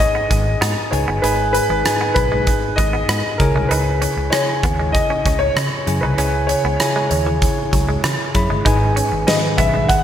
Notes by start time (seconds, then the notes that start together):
Already playing: G#2 D#4 G#4 B4 G#5
0.00 D#5, kick
0.15 B3
0.31 G#1 G#3, kick, closed hi-hat
0.61 G#2 B3, cross-stick, closed hi-hat
0.91 C#2 D#4 G#4 B4 C#5 G#5, muted clean electric guitar stroke, closed hi-hat
1.08 G1 B3
1.22 G#1 G#2 G#3 D#4 G#4 B4 G#5, closed hi-hat
1.53 B4, muted clean electric guitar stroke, closed hi-hat
1.70 G#1 G#3
1.85 D#4 G#4 B4 G#5, cross-stick, closed hi-hat
2.01 B3
2.14 B1 B4, muted clean electric guitar stroke, kick, closed hi-hat
2.32 G#3
2.47 muted clean electric guitar stroke, kick, closed hi-hat
2.76 G#1 G#3 D#5, kick, closed hi-hat
2.93 B3
3.09 G#2 B3, cross-stick, closed hi-hat
3.38 C#2 C#3 E4 G#4 A#4 C#5 G#5, muted clean electric guitar stroke, kick, closed hi-hat
3.55 C2 G#3
3.69 C#2 D#4 B4, closed hi-hat
4.02 C#4, closed hi-hat
4.17 C#2, muted clean electric guitar stroke
4.30 E4 G#4 C#5 G#5, muted clean electric guitar stroke, cross-stick, closed hi-hat
4.63 D#2 B3, kick, closed hi-hat
4.79 G#3
4.92 D#5, muted clean electric guitar stroke, kick, closed hi-hat
5.10 C#4
5.26 C#2 C#4, kick, closed hi-hat
5.39 C#5
5.56 C#3 D#4, cross-stick, closed hi-hat
5.87 F#2 C#3 E4 G#4 C#5 G#5, muted clean electric guitar stroke, closed hi-hat
6.01 C2 D#4 B4
6.18 C#2 C#4 E4 G#4 C#5 G#5, closed hi-hat
6.47 C#5, muted clean electric guitar stroke, closed hi-hat
6.64 C#2 B3
6.80 E4 G#4 C#5 G#5, cross-stick, closed hi-hat
6.96 G#3
7.09 D#2 C#5, muted clean electric guitar stroke, closed hi-hat
7.27 E3
7.42 muted clean electric guitar stroke, kick, closed hi-hat
7.73 C#2 F#3, kick, closed hi-hat
7.89 G#3
8.04 C#3 E3, cross-stick, closed hi-hat
8.34 F#2 E4 G#4 C#5 B5, muted clean electric guitar stroke, kick, closed hi-hat
8.50 G1 G#3
8.65 G#1 G#2 D#4 G#4 B4 G#5, kick, closed hi-hat
8.96 C#4, closed hi-hat
9.12 G#1, muted clean electric guitar stroke
9.27 D#3 G#4 B4 D#5 B5, muted clean electric guitar stroke, snare, closed hi-hat
9.58 B1 B3 E5, kick, closed hi-hat
9.74 G#3
9.88 F#5, muted clean electric guitar stroke, kick, closed hi-hat